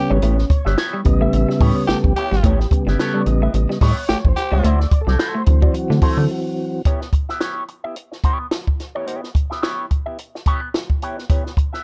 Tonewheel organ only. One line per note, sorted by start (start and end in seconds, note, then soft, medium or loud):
0.00 0.18 C#3 soft
0.00 0.19 G3 soft
0.00 0.19 B3 medium
0.00 0.52 C#4 loud
0.50 0.76 C#5 medium
1.04 1.87 C#3 medium
1.04 1.87 G3 medium
1.04 1.87 B3 medium
1.04 1.22 D#5 loud
1.22 1.63 E5 loud
1.62 1.90 C#5 loud
1.88 2.13 C#3 soft
1.88 2.13 G3 soft
1.88 2.13 B3 medium
1.88 2.03 A4 loud
2.05 2.83 G4 medium
2.71 3.50 C#3 medium
2.71 3.50 G3 soft
2.71 3.50 B3 medium
3.00 3.21 A4 medium
3.21 3.27 D5 medium
3.27 3.93 D#5 loud
3.53 3.78 C#3 soft
3.53 3.79 G3 soft
3.53 3.79 B3 soft
3.91 4.29 C#5 medium
4.28 4.66 C5 medium
4.64 5.02 D5 medium
5.01 5.39 A4 medium
5.38 5.76 C5 medium
5.47 6.82 E3 medium
5.47 6.82 F#3 medium
5.47 6.82 C4 medium
5.75 6.03 F#4 medium
6.03 6.31 A4 medium
6.31 6.82 F#4 medium